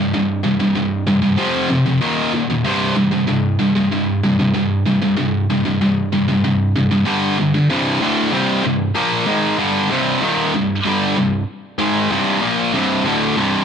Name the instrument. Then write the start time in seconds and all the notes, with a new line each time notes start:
distorted electric guitar
Already playing: C2 G2
0.14 C2 G2
0.43 C2 G2
0.60 C2 G2
0.75 C2 G2
1.07 C2 G2
1.22 C2 G2
1.38 F2 C3 F3
1.70 F2 C3
1.86 F2 C3
2.01 D#2 A#2 D#3
2.33 D#2 A#2
2.50 D#2 A#2
2.65 C2 G2 C3
2.96 C2 G2
3.12 C2 G2
3.28 C2 G2
3.60 C2 G2
3.76 C2 G2
3.92 C2 G2
4.23 C2 G2
4.39 C2 G2
4.54 C2 G2
4.86 C2 G2
5.02 C2 G2
5.17 C2 G2
5.50 C2 G2
5.65 C2 G2
5.81 C2 G2
6.12 C2 G2
6.28 C2 G2
6.44 C2 G2
6.76 C2 G2
6.91 C2 G2
7.06 G2 D3 G3
7.38 G2 D3
7.54 G2 D3
7.70 C2 G2 C3
8.01 D2 A2 D3
8.32 C2 G2 C3
8.64 C2 G2
8.95 A#2 F3 A#3
9.27 G#2 D#3 G#3
9.58 G2 D3 G3
9.90 C2 G2 C3
10.22 D#2 A#2 D#3
10.55 C2 G2
10.85 G2 D3 G3
11.16 C2 G2
11.78 G#2 D#3 G#3
12.10 C2 G2 C3
12.41 A#2 F3 A#3
12.74 C2 G2 C3
13.05 D2 A2 D3
13.37 C2 G2 C3